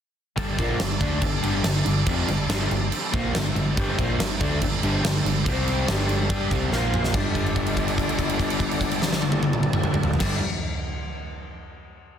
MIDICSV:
0, 0, Header, 1, 5, 480
1, 0, Start_track
1, 0, Key_signature, -2, "minor"
1, 0, Tempo, 423430
1, 419, Time_signature, 4, 2, 24, 8
1, 7140, Tempo, 415225
1, 13947, End_track
2, 0, Start_track
2, 0, Title_t, "Tonewheel organ"
2, 0, Program_c, 0, 16
2, 419, Note_on_c, 0, 69, 64
2, 425, Note_on_c, 0, 55, 66
2, 427, Note_on_c, 0, 62, 57
2, 3279, Note_off_c, 0, 62, 0
2, 3308, Note_on_c, 0, 60, 64
2, 6141, Note_off_c, 0, 69, 0
2, 6144, Note_off_c, 0, 55, 0
2, 6162, Note_on_c, 0, 67, 59
2, 6170, Note_on_c, 0, 74, 68
2, 6633, Note_off_c, 0, 60, 0
2, 6645, Note_on_c, 0, 69, 86
2, 6647, Note_off_c, 0, 67, 0
2, 6648, Note_on_c, 0, 55, 75
2, 6651, Note_off_c, 0, 74, 0
2, 6656, Note_on_c, 0, 62, 60
2, 7606, Note_off_c, 0, 69, 0
2, 7607, Note_off_c, 0, 55, 0
2, 7611, Note_off_c, 0, 62, 0
2, 7634, Note_on_c, 0, 72, 79
2, 7642, Note_on_c, 0, 65, 63
2, 7643, Note_on_c, 0, 58, 68
2, 8093, Note_on_c, 0, 55, 60
2, 8098, Note_on_c, 0, 69, 70
2, 8101, Note_on_c, 0, 62, 60
2, 8108, Note_off_c, 0, 72, 0
2, 8112, Note_off_c, 0, 65, 0
2, 8113, Note_off_c, 0, 58, 0
2, 11547, Note_off_c, 0, 55, 0
2, 11550, Note_off_c, 0, 69, 0
2, 11551, Note_off_c, 0, 62, 0
2, 11658, Note_on_c, 0, 62, 62
2, 11659, Note_on_c, 0, 69, 76
2, 11673, Note_on_c, 0, 55, 65
2, 11859, Note_off_c, 0, 62, 0
2, 11859, Note_off_c, 0, 69, 0
2, 11867, Note_off_c, 0, 55, 0
2, 13947, End_track
3, 0, Start_track
3, 0, Title_t, "Overdriven electric guitar"
3, 0, Program_c, 1, 29
3, 412, Note_on_c, 1, 43, 90
3, 414, Note_on_c, 1, 50, 89
3, 422, Note_on_c, 1, 55, 91
3, 648, Note_off_c, 1, 43, 0
3, 649, Note_off_c, 1, 50, 0
3, 654, Note_off_c, 1, 55, 0
3, 662, Note_on_c, 1, 46, 102
3, 670, Note_on_c, 1, 58, 106
3, 671, Note_on_c, 1, 53, 81
3, 893, Note_off_c, 1, 46, 0
3, 897, Note_off_c, 1, 58, 0
3, 898, Note_off_c, 1, 53, 0
3, 903, Note_on_c, 1, 43, 58
3, 909, Note_on_c, 1, 50, 78
3, 1093, Note_off_c, 1, 43, 0
3, 1096, Note_off_c, 1, 50, 0
3, 1139, Note_on_c, 1, 50, 101
3, 1150, Note_on_c, 1, 57, 90
3, 1151, Note_on_c, 1, 62, 112
3, 1372, Note_off_c, 1, 50, 0
3, 1377, Note_off_c, 1, 57, 0
3, 1378, Note_off_c, 1, 62, 0
3, 1382, Note_on_c, 1, 43, 66
3, 1385, Note_on_c, 1, 50, 72
3, 1573, Note_off_c, 1, 43, 0
3, 1574, Note_off_c, 1, 50, 0
3, 1617, Note_on_c, 1, 43, 96
3, 1620, Note_on_c, 1, 50, 107
3, 1628, Note_on_c, 1, 55, 108
3, 1841, Note_off_c, 1, 43, 0
3, 1849, Note_off_c, 1, 50, 0
3, 1854, Note_on_c, 1, 43, 64
3, 1857, Note_off_c, 1, 55, 0
3, 1862, Note_on_c, 1, 50, 73
3, 2049, Note_off_c, 1, 43, 0
3, 2053, Note_off_c, 1, 50, 0
3, 2099, Note_on_c, 1, 43, 64
3, 2100, Note_on_c, 1, 50, 68
3, 2292, Note_off_c, 1, 43, 0
3, 2292, Note_off_c, 1, 50, 0
3, 2346, Note_on_c, 1, 41, 96
3, 2346, Note_on_c, 1, 48, 90
3, 2354, Note_on_c, 1, 53, 103
3, 2576, Note_off_c, 1, 41, 0
3, 2577, Note_off_c, 1, 48, 0
3, 2581, Note_off_c, 1, 53, 0
3, 2581, Note_on_c, 1, 43, 57
3, 2583, Note_on_c, 1, 50, 76
3, 2774, Note_off_c, 1, 43, 0
3, 2775, Note_off_c, 1, 50, 0
3, 2826, Note_on_c, 1, 43, 97
3, 2831, Note_on_c, 1, 50, 98
3, 2841, Note_on_c, 1, 55, 110
3, 3053, Note_off_c, 1, 43, 0
3, 3057, Note_off_c, 1, 50, 0
3, 3065, Note_off_c, 1, 55, 0
3, 3067, Note_on_c, 1, 43, 72
3, 3071, Note_on_c, 1, 50, 83
3, 3258, Note_off_c, 1, 43, 0
3, 3260, Note_off_c, 1, 50, 0
3, 3540, Note_on_c, 1, 46, 97
3, 3551, Note_on_c, 1, 53, 110
3, 3555, Note_on_c, 1, 58, 99
3, 3774, Note_on_c, 1, 43, 64
3, 3776, Note_off_c, 1, 46, 0
3, 3781, Note_off_c, 1, 53, 0
3, 3781, Note_on_c, 1, 50, 79
3, 3784, Note_off_c, 1, 58, 0
3, 3973, Note_off_c, 1, 43, 0
3, 3976, Note_off_c, 1, 50, 0
3, 4026, Note_on_c, 1, 50, 64
3, 4029, Note_on_c, 1, 43, 59
3, 4219, Note_off_c, 1, 50, 0
3, 4220, Note_off_c, 1, 43, 0
3, 4276, Note_on_c, 1, 43, 100
3, 4277, Note_on_c, 1, 50, 89
3, 4284, Note_on_c, 1, 55, 103
3, 4505, Note_off_c, 1, 43, 0
3, 4505, Note_off_c, 1, 50, 0
3, 4509, Note_off_c, 1, 55, 0
3, 4517, Note_on_c, 1, 46, 99
3, 4524, Note_on_c, 1, 53, 109
3, 4526, Note_on_c, 1, 58, 98
3, 4746, Note_off_c, 1, 46, 0
3, 4749, Note_off_c, 1, 53, 0
3, 4750, Note_off_c, 1, 58, 0
3, 4758, Note_on_c, 1, 43, 74
3, 4763, Note_on_c, 1, 50, 79
3, 4945, Note_off_c, 1, 43, 0
3, 4948, Note_off_c, 1, 50, 0
3, 4994, Note_on_c, 1, 50, 94
3, 4998, Note_on_c, 1, 57, 102
3, 5000, Note_on_c, 1, 62, 111
3, 5224, Note_off_c, 1, 50, 0
3, 5226, Note_off_c, 1, 57, 0
3, 5227, Note_off_c, 1, 62, 0
3, 5228, Note_on_c, 1, 43, 69
3, 5236, Note_on_c, 1, 50, 73
3, 5420, Note_off_c, 1, 43, 0
3, 5424, Note_off_c, 1, 50, 0
3, 5477, Note_on_c, 1, 43, 106
3, 5485, Note_on_c, 1, 50, 92
3, 5487, Note_on_c, 1, 55, 111
3, 5699, Note_off_c, 1, 43, 0
3, 5703, Note_off_c, 1, 50, 0
3, 5710, Note_off_c, 1, 55, 0
3, 5713, Note_on_c, 1, 43, 64
3, 5717, Note_on_c, 1, 50, 72
3, 5902, Note_off_c, 1, 43, 0
3, 5904, Note_off_c, 1, 50, 0
3, 5948, Note_on_c, 1, 43, 66
3, 5956, Note_on_c, 1, 50, 66
3, 6139, Note_off_c, 1, 43, 0
3, 6172, Note_off_c, 1, 50, 0
3, 6172, Note_on_c, 1, 48, 99
3, 6175, Note_on_c, 1, 55, 95
3, 6181, Note_on_c, 1, 60, 100
3, 6650, Note_off_c, 1, 48, 0
3, 6651, Note_off_c, 1, 55, 0
3, 6654, Note_off_c, 1, 60, 0
3, 6659, Note_on_c, 1, 50, 96
3, 6662, Note_on_c, 1, 43, 88
3, 6664, Note_on_c, 1, 55, 101
3, 7126, Note_off_c, 1, 55, 0
3, 7131, Note_off_c, 1, 50, 0
3, 7132, Note_off_c, 1, 43, 0
3, 7140, Note_on_c, 1, 55, 100
3, 7143, Note_on_c, 1, 62, 107
3, 7143, Note_on_c, 1, 67, 104
3, 7376, Note_off_c, 1, 55, 0
3, 7377, Note_off_c, 1, 62, 0
3, 7377, Note_off_c, 1, 67, 0
3, 7387, Note_on_c, 1, 48, 99
3, 7390, Note_on_c, 1, 60, 94
3, 7392, Note_on_c, 1, 55, 96
3, 7609, Note_off_c, 1, 48, 0
3, 7613, Note_off_c, 1, 55, 0
3, 7613, Note_on_c, 1, 46, 100
3, 7617, Note_on_c, 1, 53, 95
3, 7622, Note_off_c, 1, 60, 0
3, 7631, Note_on_c, 1, 58, 95
3, 8090, Note_on_c, 1, 43, 98
3, 8095, Note_off_c, 1, 46, 0
3, 8097, Note_off_c, 1, 53, 0
3, 8104, Note_off_c, 1, 58, 0
3, 8116, Note_on_c, 1, 50, 110
3, 8142, Note_on_c, 1, 55, 108
3, 11631, Note_off_c, 1, 43, 0
3, 11635, Note_on_c, 1, 43, 100
3, 11653, Note_off_c, 1, 50, 0
3, 11657, Note_on_c, 1, 50, 109
3, 11674, Note_off_c, 1, 55, 0
3, 11678, Note_on_c, 1, 55, 114
3, 11862, Note_off_c, 1, 43, 0
3, 11873, Note_off_c, 1, 50, 0
3, 11884, Note_off_c, 1, 55, 0
3, 13947, End_track
4, 0, Start_track
4, 0, Title_t, "Fingered electric bass"
4, 0, Program_c, 2, 33
4, 424, Note_on_c, 2, 31, 91
4, 645, Note_off_c, 2, 31, 0
4, 663, Note_on_c, 2, 34, 96
4, 884, Note_off_c, 2, 34, 0
4, 905, Note_on_c, 2, 31, 79
4, 1125, Note_off_c, 2, 31, 0
4, 1142, Note_on_c, 2, 38, 96
4, 1364, Note_off_c, 2, 38, 0
4, 1383, Note_on_c, 2, 31, 80
4, 1604, Note_off_c, 2, 31, 0
4, 1619, Note_on_c, 2, 31, 103
4, 1842, Note_off_c, 2, 31, 0
4, 1863, Note_on_c, 2, 31, 80
4, 2085, Note_off_c, 2, 31, 0
4, 2105, Note_on_c, 2, 31, 74
4, 2327, Note_off_c, 2, 31, 0
4, 2348, Note_on_c, 2, 29, 96
4, 2568, Note_off_c, 2, 29, 0
4, 2580, Note_on_c, 2, 31, 82
4, 2805, Note_off_c, 2, 31, 0
4, 2826, Note_on_c, 2, 31, 100
4, 3048, Note_off_c, 2, 31, 0
4, 3067, Note_on_c, 2, 31, 92
4, 3289, Note_off_c, 2, 31, 0
4, 3559, Note_on_c, 2, 34, 99
4, 3776, Note_off_c, 2, 34, 0
4, 3786, Note_on_c, 2, 31, 85
4, 4010, Note_off_c, 2, 31, 0
4, 4028, Note_on_c, 2, 31, 81
4, 4251, Note_off_c, 2, 31, 0
4, 4280, Note_on_c, 2, 31, 95
4, 4498, Note_off_c, 2, 31, 0
4, 4521, Note_on_c, 2, 34, 89
4, 4739, Note_off_c, 2, 34, 0
4, 4745, Note_on_c, 2, 31, 81
4, 4970, Note_off_c, 2, 31, 0
4, 4999, Note_on_c, 2, 38, 95
4, 5218, Note_off_c, 2, 38, 0
4, 5238, Note_on_c, 2, 31, 84
4, 5457, Note_off_c, 2, 31, 0
4, 5477, Note_on_c, 2, 31, 97
4, 5696, Note_off_c, 2, 31, 0
4, 5718, Note_on_c, 2, 31, 81
4, 5936, Note_off_c, 2, 31, 0
4, 5946, Note_on_c, 2, 31, 76
4, 6169, Note_off_c, 2, 31, 0
4, 6190, Note_on_c, 2, 36, 92
4, 6632, Note_off_c, 2, 36, 0
4, 6667, Note_on_c, 2, 31, 95
4, 7109, Note_off_c, 2, 31, 0
4, 7143, Note_on_c, 2, 43, 93
4, 7367, Note_off_c, 2, 43, 0
4, 7386, Note_on_c, 2, 36, 87
4, 7610, Note_off_c, 2, 36, 0
4, 7618, Note_on_c, 2, 34, 100
4, 8071, Note_off_c, 2, 34, 0
4, 8118, Note_on_c, 2, 31, 81
4, 11560, Note_off_c, 2, 31, 0
4, 11664, Note_on_c, 2, 31, 91
4, 11862, Note_off_c, 2, 31, 0
4, 13947, End_track
5, 0, Start_track
5, 0, Title_t, "Drums"
5, 426, Note_on_c, 9, 36, 100
5, 430, Note_on_c, 9, 49, 75
5, 540, Note_off_c, 9, 36, 0
5, 543, Note_off_c, 9, 49, 0
5, 665, Note_on_c, 9, 36, 95
5, 669, Note_on_c, 9, 49, 58
5, 778, Note_off_c, 9, 36, 0
5, 782, Note_off_c, 9, 49, 0
5, 903, Note_on_c, 9, 49, 83
5, 906, Note_on_c, 9, 38, 105
5, 1017, Note_off_c, 9, 49, 0
5, 1019, Note_off_c, 9, 38, 0
5, 1143, Note_on_c, 9, 36, 101
5, 1147, Note_on_c, 9, 49, 58
5, 1256, Note_off_c, 9, 36, 0
5, 1260, Note_off_c, 9, 49, 0
5, 1378, Note_on_c, 9, 49, 76
5, 1382, Note_on_c, 9, 36, 88
5, 1491, Note_off_c, 9, 49, 0
5, 1495, Note_off_c, 9, 36, 0
5, 1626, Note_on_c, 9, 49, 64
5, 1739, Note_off_c, 9, 49, 0
5, 1860, Note_on_c, 9, 49, 92
5, 1863, Note_on_c, 9, 38, 97
5, 1974, Note_off_c, 9, 49, 0
5, 1976, Note_off_c, 9, 38, 0
5, 2105, Note_on_c, 9, 49, 69
5, 2218, Note_off_c, 9, 49, 0
5, 2340, Note_on_c, 9, 49, 82
5, 2343, Note_on_c, 9, 36, 104
5, 2453, Note_off_c, 9, 49, 0
5, 2457, Note_off_c, 9, 36, 0
5, 2588, Note_on_c, 9, 49, 56
5, 2701, Note_off_c, 9, 49, 0
5, 2829, Note_on_c, 9, 49, 87
5, 2832, Note_on_c, 9, 38, 102
5, 2943, Note_off_c, 9, 49, 0
5, 2945, Note_off_c, 9, 38, 0
5, 3073, Note_on_c, 9, 49, 54
5, 3186, Note_off_c, 9, 49, 0
5, 3310, Note_on_c, 9, 49, 77
5, 3423, Note_off_c, 9, 49, 0
5, 3556, Note_on_c, 9, 36, 105
5, 3556, Note_on_c, 9, 49, 54
5, 3669, Note_off_c, 9, 36, 0
5, 3670, Note_off_c, 9, 49, 0
5, 3794, Note_on_c, 9, 49, 77
5, 3797, Note_on_c, 9, 38, 100
5, 3908, Note_off_c, 9, 49, 0
5, 3910, Note_off_c, 9, 38, 0
5, 4037, Note_on_c, 9, 49, 58
5, 4151, Note_off_c, 9, 49, 0
5, 4278, Note_on_c, 9, 36, 117
5, 4283, Note_on_c, 9, 49, 72
5, 4391, Note_off_c, 9, 36, 0
5, 4397, Note_off_c, 9, 49, 0
5, 4519, Note_on_c, 9, 36, 97
5, 4524, Note_on_c, 9, 49, 54
5, 4632, Note_off_c, 9, 36, 0
5, 4638, Note_off_c, 9, 49, 0
5, 4761, Note_on_c, 9, 49, 88
5, 4763, Note_on_c, 9, 38, 108
5, 4874, Note_off_c, 9, 49, 0
5, 4876, Note_off_c, 9, 38, 0
5, 4995, Note_on_c, 9, 49, 64
5, 4997, Note_on_c, 9, 36, 107
5, 5108, Note_off_c, 9, 49, 0
5, 5110, Note_off_c, 9, 36, 0
5, 5232, Note_on_c, 9, 49, 79
5, 5236, Note_on_c, 9, 36, 80
5, 5346, Note_off_c, 9, 49, 0
5, 5349, Note_off_c, 9, 36, 0
5, 5476, Note_on_c, 9, 49, 68
5, 5589, Note_off_c, 9, 49, 0
5, 5719, Note_on_c, 9, 49, 90
5, 5722, Note_on_c, 9, 38, 118
5, 5833, Note_off_c, 9, 49, 0
5, 5835, Note_off_c, 9, 38, 0
5, 5964, Note_on_c, 9, 49, 60
5, 6077, Note_off_c, 9, 49, 0
5, 6192, Note_on_c, 9, 36, 111
5, 6198, Note_on_c, 9, 49, 86
5, 6305, Note_off_c, 9, 36, 0
5, 6311, Note_off_c, 9, 49, 0
5, 6434, Note_on_c, 9, 49, 57
5, 6547, Note_off_c, 9, 49, 0
5, 6668, Note_on_c, 9, 49, 85
5, 6670, Note_on_c, 9, 38, 121
5, 6781, Note_off_c, 9, 49, 0
5, 6784, Note_off_c, 9, 38, 0
5, 6904, Note_on_c, 9, 49, 67
5, 7017, Note_off_c, 9, 49, 0
5, 7142, Note_on_c, 9, 36, 104
5, 7143, Note_on_c, 9, 49, 73
5, 7257, Note_off_c, 9, 36, 0
5, 7258, Note_off_c, 9, 49, 0
5, 7388, Note_on_c, 9, 36, 100
5, 7396, Note_on_c, 9, 49, 58
5, 7503, Note_off_c, 9, 36, 0
5, 7511, Note_off_c, 9, 49, 0
5, 7633, Note_on_c, 9, 38, 62
5, 7748, Note_off_c, 9, 38, 0
5, 7878, Note_on_c, 9, 45, 105
5, 7994, Note_off_c, 9, 45, 0
5, 8002, Note_on_c, 9, 38, 76
5, 8114, Note_on_c, 9, 36, 111
5, 8116, Note_on_c, 9, 57, 84
5, 8117, Note_off_c, 9, 38, 0
5, 8230, Note_off_c, 9, 36, 0
5, 8232, Note_off_c, 9, 57, 0
5, 8357, Note_on_c, 9, 36, 59
5, 8362, Note_on_c, 9, 57, 42
5, 8473, Note_off_c, 9, 36, 0
5, 8477, Note_off_c, 9, 57, 0
5, 8486, Note_on_c, 9, 49, 42
5, 8598, Note_on_c, 9, 36, 62
5, 8598, Note_on_c, 9, 57, 47
5, 8602, Note_off_c, 9, 49, 0
5, 8713, Note_off_c, 9, 36, 0
5, 8713, Note_off_c, 9, 57, 0
5, 8719, Note_on_c, 9, 49, 55
5, 8835, Note_off_c, 9, 49, 0
5, 8840, Note_on_c, 9, 36, 65
5, 8841, Note_on_c, 9, 57, 49
5, 8956, Note_off_c, 9, 36, 0
5, 8957, Note_off_c, 9, 57, 0
5, 8966, Note_on_c, 9, 49, 50
5, 9081, Note_off_c, 9, 49, 0
5, 9084, Note_on_c, 9, 36, 68
5, 9098, Note_on_c, 9, 57, 47
5, 9200, Note_off_c, 9, 36, 0
5, 9211, Note_on_c, 9, 49, 52
5, 9213, Note_off_c, 9, 57, 0
5, 9323, Note_on_c, 9, 36, 59
5, 9326, Note_off_c, 9, 49, 0
5, 9327, Note_on_c, 9, 57, 50
5, 9438, Note_off_c, 9, 36, 0
5, 9442, Note_off_c, 9, 57, 0
5, 9447, Note_on_c, 9, 49, 52
5, 9563, Note_off_c, 9, 49, 0
5, 9564, Note_on_c, 9, 36, 61
5, 9571, Note_on_c, 9, 57, 51
5, 9679, Note_off_c, 9, 36, 0
5, 9687, Note_off_c, 9, 57, 0
5, 9687, Note_on_c, 9, 49, 58
5, 9800, Note_on_c, 9, 36, 68
5, 9802, Note_off_c, 9, 49, 0
5, 9805, Note_on_c, 9, 57, 52
5, 9916, Note_off_c, 9, 36, 0
5, 9920, Note_off_c, 9, 57, 0
5, 9931, Note_on_c, 9, 49, 50
5, 10040, Note_on_c, 9, 36, 64
5, 10047, Note_off_c, 9, 49, 0
5, 10047, Note_on_c, 9, 57, 54
5, 10156, Note_off_c, 9, 36, 0
5, 10162, Note_off_c, 9, 57, 0
5, 10163, Note_on_c, 9, 49, 53
5, 10279, Note_off_c, 9, 49, 0
5, 10286, Note_on_c, 9, 38, 85
5, 10402, Note_off_c, 9, 38, 0
5, 10408, Note_on_c, 9, 38, 89
5, 10519, Note_on_c, 9, 48, 87
5, 10523, Note_off_c, 9, 38, 0
5, 10632, Note_off_c, 9, 48, 0
5, 10632, Note_on_c, 9, 48, 109
5, 10748, Note_off_c, 9, 48, 0
5, 10756, Note_on_c, 9, 48, 98
5, 10872, Note_off_c, 9, 48, 0
5, 10878, Note_on_c, 9, 47, 95
5, 10992, Note_off_c, 9, 47, 0
5, 10992, Note_on_c, 9, 47, 92
5, 11107, Note_off_c, 9, 47, 0
5, 11110, Note_on_c, 9, 45, 109
5, 11225, Note_off_c, 9, 45, 0
5, 11228, Note_on_c, 9, 45, 98
5, 11344, Note_off_c, 9, 45, 0
5, 11349, Note_on_c, 9, 45, 104
5, 11458, Note_on_c, 9, 43, 100
5, 11464, Note_off_c, 9, 45, 0
5, 11574, Note_off_c, 9, 43, 0
5, 11575, Note_on_c, 9, 43, 98
5, 11650, Note_on_c, 9, 57, 103
5, 11652, Note_on_c, 9, 38, 99
5, 11660, Note_on_c, 9, 36, 110
5, 11691, Note_off_c, 9, 43, 0
5, 11765, Note_off_c, 9, 57, 0
5, 11768, Note_off_c, 9, 38, 0
5, 11775, Note_off_c, 9, 36, 0
5, 13947, End_track
0, 0, End_of_file